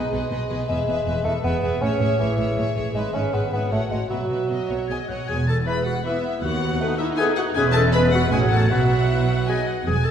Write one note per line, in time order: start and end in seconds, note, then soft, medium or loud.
0.00 0.67 G#3 medium
0.00 0.11 G#4 soft
0.00 0.12 B4 medium
0.00 0.10 D#5 soft
0.12 0.20 B1 medium
0.12 0.20 B2 medium
0.12 0.29 G#4 soft
0.12 0.31 B4 medium
0.12 0.29 D#5 soft
0.30 0.39 B1 medium
0.30 0.38 B2 medium
0.30 0.49 G#4 medium
0.30 0.49 B4 medium
0.30 0.47 D#5 soft
0.49 0.58 B1 medium
0.49 0.57 B2 medium
0.49 0.67 G#4 medium
0.49 0.68 B4 medium
0.49 0.67 D#5 medium
0.66 0.77 E1 medium
0.66 0.76 E2 medium
0.66 1.24 G#3 medium
0.66 0.86 G#4 medium
0.66 0.88 B4 medium
0.66 0.85 E5 medium
0.87 0.96 E1 medium
0.87 0.94 E2 medium
0.87 1.05 G#4 medium
0.87 1.05 B4 medium
0.87 1.05 E5 medium
1.06 1.14 E1 medium
1.06 1.13 E2 medium
1.06 1.24 G#4 soft
1.06 1.25 B4 medium
1.06 1.24 E5 soft
1.24 1.34 E1 medium
1.24 1.32 E2 medium
1.24 1.33 A3 medium
1.24 1.42 G#4 soft
1.24 1.43 B4 medium
1.24 1.43 E5 soft
1.43 1.52 E1 medium
1.43 1.51 E2 medium
1.43 1.83 B3 medium
1.43 1.61 G#4 medium
1.43 1.62 B4 medium
1.43 1.61 E5 medium
1.62 1.71 E1 medium
1.62 1.70 E2 medium
1.62 1.80 G#4 medium
1.62 1.81 B4 medium
1.62 1.81 E5 soft
1.81 1.90 A1 medium
1.81 1.89 A2 medium
1.81 2.19 C#4 medium
1.81 1.99 G#4 soft
1.81 2.00 C#5 medium
1.81 2.00 E5 medium
2.00 2.09 A1 medium
2.00 2.08 A2 medium
2.00 2.19 G#4 soft
2.00 2.19 C#5 medium
2.00 2.18 E5 medium
2.18 2.28 A1 medium
2.18 2.26 A2 medium
2.18 2.68 E3 medium
2.18 2.37 G#4 medium
2.18 2.38 C#5 medium
2.18 2.38 E5 medium
2.38 2.46 A1 medium
2.38 2.45 A2 medium
2.38 2.56 G#4 soft
2.38 2.57 C#5 medium
2.38 2.57 E5 soft
2.56 2.65 A1 medium
2.56 2.64 A2 medium
2.56 2.74 G#4 soft
2.56 2.75 C#5 medium
2.56 2.76 E5 medium
2.76 2.84 A1 medium
2.76 2.83 A2 medium
2.76 2.93 G#4 medium
2.76 2.95 C#5 soft
2.76 2.92 E5 medium
2.93 3.03 G#1 medium
2.93 3.03 G#2 medium
2.93 3.16 G#3 medium
2.93 3.13 G#4 soft
2.93 3.14 B4 medium
2.93 3.12 E5 medium
3.13 3.22 G#1 medium
3.13 3.21 G#2 medium
3.13 3.35 C#4 medium
3.13 3.32 G#4 soft
3.13 3.32 B4 soft
3.13 3.30 E5 soft
3.32 3.41 G#1 medium
3.32 3.41 G#2 medium
3.32 3.52 B3 medium
3.32 3.51 G#4 soft
3.32 3.51 B4 soft
3.32 3.51 E5 soft
3.52 3.61 G#1 soft
3.52 3.60 G#2 soft
3.52 3.71 B3 medium
3.52 3.71 G#4 soft
3.52 3.71 B4 soft
3.52 3.71 E5 soft
3.70 3.79 A1 soft
3.70 3.79 A2 soft
3.70 3.81 A3 medium
3.70 3.89 F#4 soft
3.70 3.90 C#5 soft
3.70 3.89 F#5 soft
3.90 3.99 A1 soft
3.90 3.99 A2 soft
3.90 4.00 G#3 medium
3.90 4.09 F#4 soft
3.90 4.11 C#5 soft
3.90 4.10 F#5 soft
4.09 4.19 B1 soft
4.09 4.18 B2 soft
4.09 4.87 F#3 medium
4.09 4.28 F#4 soft
4.09 4.30 B4 soft
4.09 4.28 E5 soft
4.29 4.38 B1 soft
4.29 4.38 B2 soft
4.29 4.47 F#4 soft
4.29 4.51 B4 soft
4.29 4.49 E5 soft
4.48 4.58 B1 soft
4.48 4.57 B2 soft
4.48 4.68 F#4 soft
4.48 4.68 D#5 soft
4.48 4.69 E5 soft
4.69 4.77 B1 soft
4.69 4.77 B2 soft
4.69 4.87 F#4 soft
4.69 4.89 C#5 soft
4.69 4.89 E5 soft
4.88 4.97 B1 soft
4.88 4.97 B2 soft
4.88 5.07 F#4 soft
4.88 4.98 G#4 medium
4.88 5.08 D#5 soft
4.88 5.10 D#5 medium
4.88 4.98 G#5 medium
4.88 5.07 G#6 medium
5.08 5.17 B1 soft
5.08 5.16 B2 soft
5.08 5.27 F#4 soft
5.08 5.18 F#4 soft
5.08 5.29 C#5 soft
5.08 5.28 D#5 soft
5.08 5.28 F#5 soft
5.08 5.27 F#6 soft
5.28 5.60 E1 medium
5.28 5.60 E2 medium
5.28 5.38 G#4 medium
5.28 5.48 G#5 medium
5.28 5.46 G#6 medium
5.47 5.57 A4 medium
5.47 5.56 A5 medium
5.47 5.65 A6 medium
5.66 5.80 E3 soft
5.66 6.02 G#3 soft
5.66 5.81 B3 soft
5.66 5.81 E4 soft
5.66 5.80 B4 soft
5.66 5.75 B4 soft
5.66 5.85 B4 medium
5.66 5.74 E5 soft
5.66 5.86 B5 medium
5.66 5.85 B6 medium
5.86 5.94 F#4 medium
5.86 6.05 F#5 medium
5.86 6.04 F#6 medium
6.04 6.18 E3 medium
6.04 6.41 B3 medium
6.04 6.20 B3 medium
6.04 6.43 E4 medium
6.04 6.21 E4 soft
6.04 6.18 B4 soft
6.04 6.14 B4 medium
6.04 6.42 E5 medium
6.04 6.12 E5 soft
6.04 6.41 E6 medium
6.42 6.74 D#2 medium
6.42 6.75 D#2 medium
6.42 6.80 B3 medium
6.42 6.99 F#4 medium
6.42 6.98 F#5 medium
6.42 6.95 F#6 medium
6.80 6.94 A3 medium
6.80 6.95 B3 medium
6.80 7.55 D#4 medium
6.80 6.96 A4 medium
6.80 6.95 B4 medium
6.80 6.90 B4 medium
6.80 6.87 F#5 medium
6.98 7.18 E4 medium
6.98 7.06 E5 medium
6.98 7.16 E6 medium
7.17 7.32 A3 medium
7.17 7.32 B3 medium
7.17 7.28 G#4 loud
7.17 7.32 A4 medium
7.17 7.27 B4 medium
7.17 7.33 B4 medium
7.17 7.27 F#5 medium
7.17 7.25 G#5 loud
7.17 7.36 G#6 medium
7.36 7.46 F#4 medium
7.36 7.44 F#5 medium
7.36 7.55 F#6 medium
7.54 8.28 E1 medium
7.54 8.28 E2 medium
7.54 7.91 G#3 medium
7.54 7.93 C#4 medium
7.54 7.66 G#4 loud
7.54 7.92 B4 medium
7.54 7.92 E5 medium
7.54 7.62 G#5 loud
7.54 7.73 G#6 loud
7.72 7.84 A4 loud
7.72 7.80 A5 medium
7.72 7.94 A6 medium
7.92 8.34 G#3 medium
7.92 8.08 B3 medium
7.92 8.32 B3 medium
7.92 8.08 G#4 medium
7.92 8.31 B4 medium
7.92 8.13 B4 loud
7.92 8.35 B4 medium
7.92 8.33 E5 medium
7.92 8.00 B5 loud
8.11 8.23 F#4 medium
8.11 8.31 F#5 medium
8.11 8.31 F#6 medium
8.31 8.71 A1 medium
8.31 8.70 A2 medium
8.31 8.70 F#3 medium
8.31 8.45 C#4 medium
8.31 8.69 C#4 medium
8.31 8.46 F#4 medium
8.31 8.53 G#4 medium
8.31 8.73 C#5 medium
8.31 8.71 F#5 medium
8.31 8.70 F#5 medium
8.31 8.39 G#5 medium
8.31 8.51 G#6 medium
8.50 8.70 A4 medium
8.50 8.70 A5 medium
8.50 8.70 A6 medium
8.70 9.67 B1 medium
8.70 9.67 B2 medium
8.70 9.65 F#3 soft
8.70 9.46 F#3 medium
8.70 9.46 F#4 medium
8.70 9.48 B4 medium
8.70 9.51 E5 soft
8.70 9.49 E5 medium
8.70 9.46 F#5 medium
8.70 9.45 F#6 medium
9.08 9.23 B3 soft
9.08 9.22 E4 soft
9.48 9.67 F#3 soft
9.48 9.63 B3 soft
9.48 9.63 D#4 soft
9.48 9.57 G#4 medium
9.48 9.58 B4 soft
9.48 9.68 D#5 soft
9.48 9.67 G#5 medium
9.48 9.67 G#6 medium
9.67 9.86 F#4 soft
9.67 9.86 F#5 medium
9.67 9.86 F#6 soft
9.86 10.11 E1 medium
9.86 10.11 E2 medium
9.86 9.95 G#4 medium
9.86 10.05 G#5 medium
9.86 10.04 G#6 medium
10.05 10.11 A4 medium
10.05 10.11 A5 medium
10.05 10.11 A6 medium